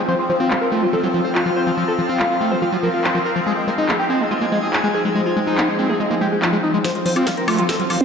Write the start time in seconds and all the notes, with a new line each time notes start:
Already playing: F3 C4 D#4
0.08 F3 C4 C5
0.19 F4
0.30 F3 C5
0.40 C4 F4
0.51 F3 F4 F5, clap
0.61 A#4
0.67 F4
0.72 A3 F4
0.82 F3 F4
0.93 F3 A4
1.03 F#3 F4
1.14 F3 F4
1.25 C5
1.35 F4, clap
1.46 F3 F4
1.56 C5
1.67 F3 F4
1.77 F3 F4
1.88 A4
1.99 F3 F4
2.09 C4 F4
2.20 F3 F4, clap
2.30 F4
2.41 A3 F4
2.51 F3 C5
2.62 F3 F4
2.72 F#3 F4
2.83 F3 A#4
2.94 F4
3.04 C5, clap
3.15 F3 F4
3.25 A#4
3.36 F3 F4
3.46 G#3 D#4 G#4
3.57 G#3
3.68 G#3 A#4
3.78 G#3 D#4 G#5
3.89 G#3, clap
3.99 G4
4.10 G#3 C4
4.20 G#3
4.27 G#4
4.31 G#3 F4
4.41 G#3 A#3
4.52 G#3
4.63 G#4
4.73 G#3, clap
4.84 G#3
4.94 G#4
5.05 G#3
5.15 G#3
5.26 F4
5.37 G#3
5.47 G#3 D#4
5.58 G#3 D#4, clap
5.68 G#3
5.79 G#3 C4
5.89 G#3 G#4
6.00 G#3
6.11 G#3 A#3
6.21 G#3 G4
6.32 G#3
6.42 F4, clap
6.53 G#3
6.63 D#4
6.74 G#3
6.84 F3 C4 C5, kick, snare, closed hi-hat, riser
6.95 F4, closed hi-hat
7.06 F3 C5, open hi-hat
7.16 C4 F4 F5, closed hi-hat, high woodblock
7.27 F3 F4, kick, snare, closed hi-hat
7.37 A#4, closed hi-hat
7.48 A3 F4, open hi-hat, high woodblock
7.58 F3 F4, closed hi-hat
7.69 F3 A4, kick, snare, closed hi-hat
7.80 F#3 F4, closed hi-hat
7.90 F3 F4, open hi-hat, high woodblock
8.01 C4 C5, closed hi-hat